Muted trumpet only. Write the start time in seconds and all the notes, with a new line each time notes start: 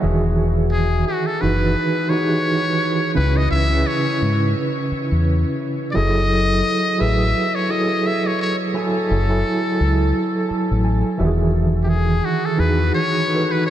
0.72 G#4
1.07 F#4
1.26 A4
1.41 B4
2.10 C#5
3.15 B4
3.37 D#5
3.51 E5
3.87 C#5
5.91 D5
5.95 D#5
7.01 E5
7.55 C#5
7.70 D#5
8.06 E5
8.26 C#5
8.41 C#5
8.77 A4
11.83 G4
11.89 G#4
12.25 F#4
12.45 A4
12.60 B4
12.95 C#5
13.51 B4
13.66 C#5